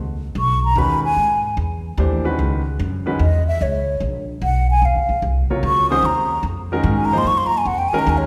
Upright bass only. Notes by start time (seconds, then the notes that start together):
Already playing: C#2
0.35 B1
0.76 D#2
1.16 G#2
1.57 E2
1.97 D#2
2.39 C#2
2.79 F#2
3.19 E2
3.61 C#2
4.00 A#1
4.42 B1
4.82 D#2
4.96 C#2
5.09 A#1
5.22 C2
5.50 muted upright bass stroke
5.63 C#2
6.02 D#2
6.43 F2
6.84 G#2
7.24 F#2
7.65 F2
7.92 muted upright bass stroke
8.07 D#2